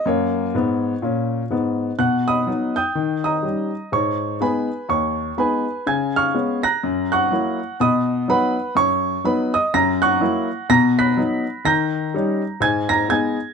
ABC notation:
X:1
M:4/4
L:1/8
Q:"Swing" 1/4=124
K:B
V:1 name="Upright piano"
c6 z2 | [ff'] [dbd']2 [=gd'=g']2 [dad']3 | [cc']2 [Bgb]2 [cc']2 [Bgb]2 | [gg'] [^ec'^e']2 [af'a']2 [fc'f']3 |
[dbd']2 [Bfb]2 [cc']2 [Bb] [dd'] | [aa'] [fc'f']3 [aa'] [bf'b']3 | [a=g'a']4 [^g^g'] [aa'] [gg'] z |]
V:2 name="Upright piano"
[F,,A,]2 [G,,B,]2 [A,,C]2 [G,,B,]2 | B,,2 [F,B,D]2 D,2 [=G,CD]2 | G,,2 [G,B,D]2 D,,2 [G,B,D]2 | C,2 [G,B,C]2 F,,2 [F,A,E]2 |
B,,2 [F,B,D]2 F,,2 [F,B,D]2 | F,,2 [F,A,E]2 B,,2 [F,B,D]2 | D,2 [=G,CD]2 ^G,,2 [^G,B,D]2 |]